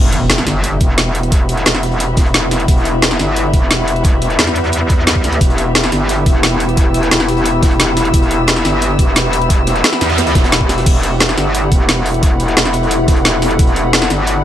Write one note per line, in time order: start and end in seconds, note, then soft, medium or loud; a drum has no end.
0.00 0.45 E1 loud
0.00 14.44 B3 medium
0.00 14.44 E4 medium
0.00 10.83 B4 medium
0.00 5.39 F#5 medium
0.00 impact medium
0.05 closed hi-hat soft
0.11 9.87 E5 medium
0.11 closed hi-hat medium
0.29 snare loud
0.29 closed hi-hat medium
0.29 closed hi-hat loud
0.38 14.44 G4 medium
0.38 snare medium
0.38 closed hi-hat soft
0.46 0.79 G1 loud
0.46 snare soft
0.46 closed hi-hat medium
0.64 closed hi-hat loud
0.64 closed hi-hat medium
0.79 1.65 E1 loud
0.79 6.27 B5 medium
0.79 kick loud
0.79 closed hi-hat medium
0.98 snare loud
0.98 closed hi-hat loud
0.98 closed hi-hat medium
1.07 snare soft
1.14 closed hi-hat medium
1.23 closed hi-hat soft
1.32 kick loud
1.32 closed hi-hat medium
1.49 closed hi-hat medium
1.57 closed hi-hat soft
1.65 2.16 E1 medium
1.65 snare loud
1.65 closed hi-hat medium
1.75 snare medium
1.83 closed hi-hat medium
1.91 closed hi-hat soft
2.00 closed hi-hat loud
2.00 closed hi-hat medium
2.17 2.67 E1 loud
2.17 kick loud
2.17 snare loud
2.17 closed hi-hat medium
2.26 closed hi-hat soft
2.34 snare loud
2.34 closed hi-hat loud
2.34 closed hi-hat medium
2.51 snare soft
2.51 closed hi-hat medium
2.60 closed hi-hat soft
2.68 3.18 E1 loud
2.68 kick loud
2.68 closed hi-hat medium
2.85 closed hi-hat medium
3.02 snare loud
3.02 closed hi-hat medium
3.11 snare medium
3.11 closed hi-hat soft
3.19 3.52 G1 loud
3.19 snare soft
3.19 closed hi-hat medium
3.36 closed hi-hat medium
3.54 4.37 E1 loud
3.54 kick loud
3.54 closed hi-hat medium
3.71 snare loud
3.71 closed hi-hat medium
3.71 closed hi-hat loud
3.79 snare soft
3.88 closed hi-hat medium
3.96 closed hi-hat soft
4.04 kick loud
4.04 closed hi-hat medium
4.22 closed hi-hat medium
4.30 closed hi-hat soft
4.39 5.23 E2 loud
4.39 snare loud
4.39 closed hi-hat medium
4.39 closed hi-hat loud
4.47 snare medium
4.55 closed hi-hat medium
4.64 closed hi-hat soft
4.72 closed hi-hat medium
4.89 kick loud
4.89 snare medium
4.89 closed hi-hat medium
5.07 snare loud
5.07 closed hi-hat loud
5.07 closed hi-hat medium
5.15 kick medium
5.24 5.40 D2 loud
5.24 snare soft
5.24 closed hi-hat medium
5.33 snare soft
5.33 closed hi-hat soft
5.41 5.91 E1 medium
5.41 10.84 B5 medium
5.41 kick loud
5.41 closed hi-hat medium
5.50 closed hi-hat soft
5.58 closed hi-hat medium
5.75 snare loud
5.75 closed hi-hat medium
5.84 snare medium
5.84 closed hi-hat soft
5.92 6.25 G1 loud
5.92 snare soft
5.92 closed hi-hat medium
6.09 closed hi-hat medium
6.25 7.10 E1 loud
6.25 11.72 E6 medium
6.25 kick loud
6.25 closed hi-hat medium
6.43 snare loud
6.43 closed hi-hat medium
6.51 snare soft
6.60 closed hi-hat medium
6.69 closed hi-hat soft
6.77 kick loud
6.77 closed hi-hat medium
6.94 closed hi-hat medium
7.03 closed hi-hat soft
7.11 7.61 E1 loud
7.11 snare loud
7.11 closed hi-hat medium
7.11 closed hi-hat loud
7.20 snare medium
7.28 closed hi-hat medium
7.37 closed hi-hat soft
7.46 closed hi-hat medium
7.63 8.12 E1 loud
7.63 kick loud
7.63 snare loud
7.63 closed hi-hat medium
7.71 closed hi-hat soft
7.80 snare loud
7.80 snare soft
7.80 closed hi-hat medium
7.97 snare soft
7.97 closed hi-hat medium
8.05 closed hi-hat soft
8.14 8.64 E1 loud
8.14 kick loud
8.14 closed hi-hat medium
8.14 closed hi-hat loud
8.22 closed hi-hat soft
8.31 closed hi-hat medium
8.47 snare loud
8.47 closed hi-hat medium
8.47 closed hi-hat loud
8.56 snare medium
8.56 closed hi-hat soft
8.65 8.98 G1 loud
8.65 snare soft
8.65 closed hi-hat medium
8.82 closed hi-hat medium
8.99 9.83 E1 loud
8.99 kick loud
8.99 closed hi-hat medium
9.16 snare loud
9.16 closed hi-hat medium
9.16 closed hi-hat loud
9.25 snare soft
9.33 closed hi-hat medium
9.42 closed hi-hat soft
9.50 kick loud
9.50 closed hi-hat medium
9.50 noise sweep medium
9.67 snare loud
9.67 closed hi-hat medium
9.76 14.44 F#5 medium
9.76 closed hi-hat soft
9.84 snare loud
9.84 closed hi-hat loud
9.84 closed hi-hat medium
9.93 snare medium
10.01 10.34 E2 loud
10.01 snare soft
10.01 closed hi-hat medium
10.10 closed hi-hat soft
10.18 snare loud
10.18 closed hi-hat loud
10.18 closed hi-hat medium
10.27 snare loud
10.27 closed hi-hat soft
10.27 closed hi-hat medium
10.35 10.85 E1 loud
10.35 kick loud
10.35 snare loud
10.35 closed hi-hat medium
10.44 snare loud
10.44 closed hi-hat medium
10.52 snare loud
10.52 closed hi-hat loud
10.52 closed hi-hat medium
10.61 kick medium
10.69 snare loud
10.69 snare soft
10.69 closed hi-hat medium
10.78 snare loud
10.78 closed hi-hat soft
10.78 closed hi-hat medium
10.86 11.36 E1 medium
10.86 14.44 A4 medium
10.86 14.44 F#5 medium
10.86 kick loud
10.86 closed hi-hat medium
10.86 crash medium
11.03 closed hi-hat medium
11.20 snare loud
11.20 closed hi-hat medium
11.20 closed hi-hat loud
11.28 snare medium
11.28 closed hi-hat soft
11.38 11.70 G1 loud
11.38 snare soft
11.38 closed hi-hat medium
11.55 closed hi-hat loud
11.55 closed hi-hat medium
11.70 12.56 E1 loud
11.70 14.44 B5 medium
11.70 kick loud
11.70 closed hi-hat medium
11.88 snare loud
11.88 closed hi-hat medium
11.88 closed hi-hat loud
11.96 snare soft
12.06 closed hi-hat medium
12.06 open hi-hat medium
12.14 closed hi-hat soft
12.23 kick loud
12.23 closed hi-hat medium
12.40 closed hi-hat medium
12.48 closed hi-hat soft
12.57 13.07 E1 loud
12.57 snare loud
12.57 closed hi-hat medium
12.57 closed hi-hat loud
12.65 snare medium
12.73 closed hi-hat medium
12.83 closed hi-hat soft
12.91 closed hi-hat medium
13.08 13.58 E1 loud
13.08 kick loud
13.08 snare loud
13.08 closed hi-hat medium
13.16 closed hi-hat soft
13.25 snare soft
13.25 snare loud
13.25 closed hi-hat loud
13.25 closed hi-hat medium
13.42 snare soft
13.42 closed hi-hat medium
13.42 open hi-hat medium
13.51 closed hi-hat soft
13.59 14.09 E1 medium
13.59 kick loud
13.59 closed hi-hat medium
13.67 closed hi-hat soft
13.76 closed hi-hat medium
13.93 snare loud
13.93 closed hi-hat medium
14.02 snare medium
14.02 closed hi-hat soft
14.10 14.43 G1 loud
14.10 snare soft
14.10 closed hi-hat medium
14.27 closed hi-hat medium